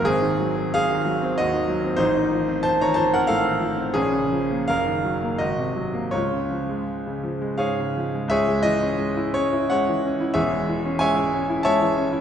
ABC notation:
X:1
M:3/4
L:1/16
Q:1/4=90
K:Db
V:1 name="Grand piano"
[CA]4 [Af]4 [Ge]4 | [Ec]4 [c=a] [db] [ca] [Bg] [=Af]4 | [DA]4 [Bf]4 [Ge]4 | [Fd]8 [Adf]4 |
[K:C#m] [Gce]2 d4 c2 [cf]4 | [Gce]4 [ceg]4 [cea]4 |]
V:2 name="Grand piano" clef=bass
A,,, E, G, C2 E, G, C E,, E, G, C | =A,,, E, F, C2 E, F, C =A,, E, F, C | B,,, D, F, B, G,,, E, G, B, A,,, C, G, B, | D,, D, F, A,2 D, F, A, A,, D, F, A, |
[K:C#m] C,, G, E, C G, E C E G, E, C E | [E,,,E,,] G, E, C G, E C E G, E, C E |]